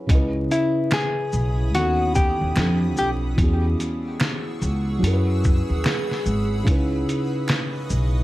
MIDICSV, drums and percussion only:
0, 0, Header, 1, 2, 480
1, 0, Start_track
1, 0, Key_signature, 4, "minor"
1, 0, Tempo, 821918
1, 53, Time_signature, 4, 2, 24, 8
1, 4810, End_track
2, 0, Start_track
2, 0, Title_t, "Drums"
2, 54, Note_on_c, 9, 36, 110
2, 56, Note_on_c, 9, 42, 78
2, 112, Note_off_c, 9, 36, 0
2, 114, Note_off_c, 9, 42, 0
2, 300, Note_on_c, 9, 42, 37
2, 300, Note_on_c, 9, 82, 35
2, 358, Note_off_c, 9, 42, 0
2, 358, Note_off_c, 9, 82, 0
2, 530, Note_on_c, 9, 26, 63
2, 532, Note_on_c, 9, 42, 62
2, 537, Note_on_c, 9, 38, 110
2, 589, Note_off_c, 9, 26, 0
2, 591, Note_off_c, 9, 42, 0
2, 595, Note_off_c, 9, 38, 0
2, 774, Note_on_c, 9, 82, 42
2, 832, Note_off_c, 9, 82, 0
2, 1020, Note_on_c, 9, 42, 78
2, 1078, Note_off_c, 9, 42, 0
2, 1256, Note_on_c, 9, 82, 47
2, 1263, Note_on_c, 9, 36, 91
2, 1314, Note_off_c, 9, 82, 0
2, 1321, Note_off_c, 9, 36, 0
2, 1493, Note_on_c, 9, 26, 74
2, 1500, Note_on_c, 9, 38, 106
2, 1504, Note_on_c, 9, 42, 51
2, 1551, Note_off_c, 9, 26, 0
2, 1558, Note_off_c, 9, 38, 0
2, 1562, Note_off_c, 9, 42, 0
2, 1734, Note_on_c, 9, 82, 43
2, 1792, Note_off_c, 9, 82, 0
2, 1974, Note_on_c, 9, 36, 127
2, 1976, Note_on_c, 9, 42, 76
2, 2032, Note_off_c, 9, 36, 0
2, 2034, Note_off_c, 9, 42, 0
2, 2219, Note_on_c, 9, 42, 38
2, 2219, Note_on_c, 9, 82, 34
2, 2278, Note_off_c, 9, 42, 0
2, 2278, Note_off_c, 9, 82, 0
2, 2451, Note_on_c, 9, 26, 69
2, 2454, Note_on_c, 9, 42, 57
2, 2458, Note_on_c, 9, 38, 110
2, 2509, Note_off_c, 9, 26, 0
2, 2512, Note_off_c, 9, 42, 0
2, 2516, Note_off_c, 9, 38, 0
2, 2697, Note_on_c, 9, 82, 42
2, 2755, Note_off_c, 9, 82, 0
2, 2943, Note_on_c, 9, 42, 78
2, 3002, Note_off_c, 9, 42, 0
2, 3178, Note_on_c, 9, 82, 44
2, 3183, Note_on_c, 9, 36, 85
2, 3236, Note_off_c, 9, 82, 0
2, 3242, Note_off_c, 9, 36, 0
2, 3411, Note_on_c, 9, 26, 78
2, 3421, Note_on_c, 9, 38, 103
2, 3425, Note_on_c, 9, 42, 50
2, 3469, Note_off_c, 9, 26, 0
2, 3479, Note_off_c, 9, 38, 0
2, 3484, Note_off_c, 9, 42, 0
2, 3570, Note_on_c, 9, 38, 34
2, 3629, Note_off_c, 9, 38, 0
2, 3653, Note_on_c, 9, 82, 42
2, 3712, Note_off_c, 9, 82, 0
2, 3894, Note_on_c, 9, 36, 118
2, 3898, Note_on_c, 9, 42, 75
2, 3952, Note_off_c, 9, 36, 0
2, 3956, Note_off_c, 9, 42, 0
2, 4141, Note_on_c, 9, 42, 35
2, 4141, Note_on_c, 9, 82, 36
2, 4199, Note_off_c, 9, 42, 0
2, 4199, Note_off_c, 9, 82, 0
2, 4367, Note_on_c, 9, 26, 62
2, 4373, Note_on_c, 9, 42, 60
2, 4377, Note_on_c, 9, 38, 105
2, 4426, Note_off_c, 9, 26, 0
2, 4432, Note_off_c, 9, 42, 0
2, 4436, Note_off_c, 9, 38, 0
2, 4612, Note_on_c, 9, 82, 48
2, 4671, Note_off_c, 9, 82, 0
2, 4810, End_track
0, 0, End_of_file